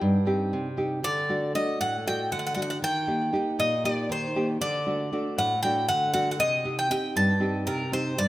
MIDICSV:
0, 0, Header, 1, 3, 480
1, 0, Start_track
1, 0, Tempo, 510638
1, 975, Time_signature, 7, 3, 24, 8
1, 7783, End_track
2, 0, Start_track
2, 0, Title_t, "Bouzouki"
2, 0, Program_c, 0, 25
2, 980, Note_on_c, 0, 74, 94
2, 1424, Note_off_c, 0, 74, 0
2, 1459, Note_on_c, 0, 75, 82
2, 1680, Note_off_c, 0, 75, 0
2, 1700, Note_on_c, 0, 78, 93
2, 1921, Note_off_c, 0, 78, 0
2, 1951, Note_on_c, 0, 79, 85
2, 2167, Note_off_c, 0, 79, 0
2, 2182, Note_on_c, 0, 78, 83
2, 2236, Note_off_c, 0, 78, 0
2, 2248, Note_on_c, 0, 78, 63
2, 2307, Note_off_c, 0, 78, 0
2, 2318, Note_on_c, 0, 78, 75
2, 2381, Note_off_c, 0, 78, 0
2, 2392, Note_on_c, 0, 78, 70
2, 2453, Note_off_c, 0, 78, 0
2, 2464, Note_on_c, 0, 78, 73
2, 2528, Note_off_c, 0, 78, 0
2, 2539, Note_on_c, 0, 78, 67
2, 2605, Note_off_c, 0, 78, 0
2, 2669, Note_on_c, 0, 79, 104
2, 3344, Note_off_c, 0, 79, 0
2, 3380, Note_on_c, 0, 75, 89
2, 3601, Note_off_c, 0, 75, 0
2, 3623, Note_on_c, 0, 74, 84
2, 3842, Note_off_c, 0, 74, 0
2, 3871, Note_on_c, 0, 72, 75
2, 4199, Note_off_c, 0, 72, 0
2, 4338, Note_on_c, 0, 74, 104
2, 5019, Note_off_c, 0, 74, 0
2, 5062, Note_on_c, 0, 78, 90
2, 5282, Note_off_c, 0, 78, 0
2, 5288, Note_on_c, 0, 79, 91
2, 5528, Note_off_c, 0, 79, 0
2, 5532, Note_on_c, 0, 78, 91
2, 5756, Note_off_c, 0, 78, 0
2, 5767, Note_on_c, 0, 78, 93
2, 5924, Note_off_c, 0, 78, 0
2, 5935, Note_on_c, 0, 78, 73
2, 6008, Note_off_c, 0, 78, 0
2, 6015, Note_on_c, 0, 75, 101
2, 6350, Note_off_c, 0, 75, 0
2, 6380, Note_on_c, 0, 79, 97
2, 6484, Note_off_c, 0, 79, 0
2, 6495, Note_on_c, 0, 79, 93
2, 6732, Note_off_c, 0, 79, 0
2, 6736, Note_on_c, 0, 81, 94
2, 7183, Note_off_c, 0, 81, 0
2, 7208, Note_on_c, 0, 70, 80
2, 7436, Note_off_c, 0, 70, 0
2, 7458, Note_on_c, 0, 72, 85
2, 7693, Note_on_c, 0, 74, 101
2, 7705, Note_off_c, 0, 72, 0
2, 7783, Note_off_c, 0, 74, 0
2, 7783, End_track
3, 0, Start_track
3, 0, Title_t, "Nylon-string guitar"
3, 0, Program_c, 1, 24
3, 0, Note_on_c, 1, 60, 50
3, 0, Note_on_c, 1, 63, 45
3, 0, Note_on_c, 1, 67, 56
3, 13, Note_on_c, 1, 43, 77
3, 156, Note_off_c, 1, 60, 0
3, 156, Note_off_c, 1, 63, 0
3, 159, Note_off_c, 1, 67, 0
3, 247, Note_on_c, 1, 60, 53
3, 252, Note_on_c, 1, 63, 50
3, 253, Note_on_c, 1, 67, 57
3, 479, Note_off_c, 1, 43, 0
3, 498, Note_on_c, 1, 48, 67
3, 634, Note_off_c, 1, 60, 0
3, 637, Note_off_c, 1, 63, 0
3, 638, Note_off_c, 1, 67, 0
3, 726, Note_on_c, 1, 60, 49
3, 731, Note_on_c, 1, 63, 47
3, 732, Note_on_c, 1, 67, 56
3, 922, Note_off_c, 1, 60, 0
3, 924, Note_off_c, 1, 67, 0
3, 925, Note_off_c, 1, 63, 0
3, 962, Note_off_c, 1, 48, 0
3, 972, Note_on_c, 1, 50, 70
3, 1212, Note_on_c, 1, 57, 50
3, 1216, Note_on_c, 1, 62, 41
3, 1221, Note_on_c, 1, 66, 53
3, 1439, Note_off_c, 1, 50, 0
3, 1443, Note_off_c, 1, 57, 0
3, 1447, Note_off_c, 1, 62, 0
3, 1451, Note_off_c, 1, 66, 0
3, 1455, Note_on_c, 1, 57, 54
3, 1458, Note_on_c, 1, 62, 47
3, 1463, Note_on_c, 1, 66, 59
3, 1695, Note_on_c, 1, 45, 71
3, 1839, Note_off_c, 1, 57, 0
3, 1841, Note_off_c, 1, 62, 0
3, 1844, Note_off_c, 1, 66, 0
3, 1942, Note_on_c, 1, 57, 57
3, 1944, Note_on_c, 1, 62, 43
3, 1951, Note_on_c, 1, 66, 60
3, 2161, Note_off_c, 1, 45, 0
3, 2176, Note_on_c, 1, 50, 67
3, 2324, Note_off_c, 1, 57, 0
3, 2324, Note_off_c, 1, 62, 0
3, 2326, Note_off_c, 1, 66, 0
3, 2402, Note_on_c, 1, 57, 50
3, 2407, Note_on_c, 1, 62, 46
3, 2412, Note_on_c, 1, 66, 60
3, 2599, Note_off_c, 1, 57, 0
3, 2602, Note_off_c, 1, 62, 0
3, 2605, Note_off_c, 1, 66, 0
3, 2641, Note_off_c, 1, 50, 0
3, 2653, Note_on_c, 1, 51, 66
3, 2889, Note_on_c, 1, 58, 48
3, 2892, Note_on_c, 1, 63, 41
3, 2893, Note_on_c, 1, 67, 51
3, 3114, Note_off_c, 1, 58, 0
3, 3119, Note_off_c, 1, 51, 0
3, 3120, Note_off_c, 1, 63, 0
3, 3122, Note_off_c, 1, 67, 0
3, 3126, Note_on_c, 1, 58, 45
3, 3130, Note_on_c, 1, 63, 47
3, 3134, Note_on_c, 1, 67, 56
3, 3373, Note_on_c, 1, 46, 65
3, 3513, Note_off_c, 1, 58, 0
3, 3516, Note_off_c, 1, 63, 0
3, 3518, Note_off_c, 1, 67, 0
3, 3610, Note_on_c, 1, 58, 47
3, 3616, Note_on_c, 1, 63, 43
3, 3621, Note_on_c, 1, 67, 54
3, 3839, Note_off_c, 1, 46, 0
3, 3848, Note_on_c, 1, 51, 61
3, 3997, Note_off_c, 1, 58, 0
3, 3998, Note_off_c, 1, 63, 0
3, 3998, Note_off_c, 1, 67, 0
3, 4094, Note_on_c, 1, 58, 50
3, 4097, Note_on_c, 1, 63, 46
3, 4101, Note_on_c, 1, 67, 55
3, 4286, Note_off_c, 1, 58, 0
3, 4289, Note_off_c, 1, 63, 0
3, 4290, Note_off_c, 1, 67, 0
3, 4317, Note_off_c, 1, 51, 0
3, 4332, Note_on_c, 1, 50, 69
3, 4570, Note_on_c, 1, 57, 47
3, 4574, Note_on_c, 1, 62, 43
3, 4575, Note_on_c, 1, 66, 48
3, 4799, Note_off_c, 1, 50, 0
3, 4806, Note_off_c, 1, 57, 0
3, 4810, Note_off_c, 1, 62, 0
3, 4810, Note_off_c, 1, 66, 0
3, 4817, Note_on_c, 1, 57, 48
3, 4820, Note_on_c, 1, 62, 46
3, 4824, Note_on_c, 1, 66, 50
3, 5056, Note_on_c, 1, 45, 78
3, 5201, Note_off_c, 1, 57, 0
3, 5203, Note_off_c, 1, 62, 0
3, 5203, Note_off_c, 1, 66, 0
3, 5298, Note_on_c, 1, 57, 47
3, 5303, Note_on_c, 1, 62, 44
3, 5309, Note_on_c, 1, 66, 51
3, 5521, Note_off_c, 1, 45, 0
3, 5539, Note_on_c, 1, 50, 61
3, 5681, Note_off_c, 1, 57, 0
3, 5685, Note_off_c, 1, 62, 0
3, 5687, Note_off_c, 1, 66, 0
3, 5767, Note_on_c, 1, 57, 52
3, 5773, Note_on_c, 1, 62, 44
3, 5773, Note_on_c, 1, 66, 62
3, 5963, Note_off_c, 1, 57, 0
3, 5965, Note_off_c, 1, 62, 0
3, 5966, Note_off_c, 1, 66, 0
3, 6003, Note_off_c, 1, 50, 0
3, 6008, Note_on_c, 1, 48, 71
3, 6244, Note_on_c, 1, 60, 49
3, 6252, Note_on_c, 1, 63, 41
3, 6255, Note_on_c, 1, 67, 46
3, 6475, Note_off_c, 1, 60, 0
3, 6478, Note_off_c, 1, 48, 0
3, 6482, Note_off_c, 1, 63, 0
3, 6485, Note_off_c, 1, 67, 0
3, 6487, Note_on_c, 1, 60, 52
3, 6492, Note_on_c, 1, 63, 47
3, 6499, Note_on_c, 1, 67, 55
3, 6728, Note_on_c, 1, 43, 75
3, 6875, Note_off_c, 1, 60, 0
3, 6879, Note_off_c, 1, 63, 0
3, 6881, Note_off_c, 1, 67, 0
3, 6954, Note_on_c, 1, 60, 50
3, 6957, Note_on_c, 1, 63, 43
3, 6964, Note_on_c, 1, 67, 54
3, 7198, Note_off_c, 1, 43, 0
3, 7211, Note_on_c, 1, 48, 73
3, 7347, Note_off_c, 1, 60, 0
3, 7350, Note_off_c, 1, 63, 0
3, 7352, Note_off_c, 1, 67, 0
3, 7444, Note_on_c, 1, 60, 51
3, 7452, Note_on_c, 1, 63, 48
3, 7454, Note_on_c, 1, 67, 62
3, 7642, Note_off_c, 1, 60, 0
3, 7644, Note_off_c, 1, 63, 0
3, 7647, Note_off_c, 1, 67, 0
3, 7680, Note_off_c, 1, 48, 0
3, 7690, Note_on_c, 1, 43, 63
3, 7783, Note_off_c, 1, 43, 0
3, 7783, End_track
0, 0, End_of_file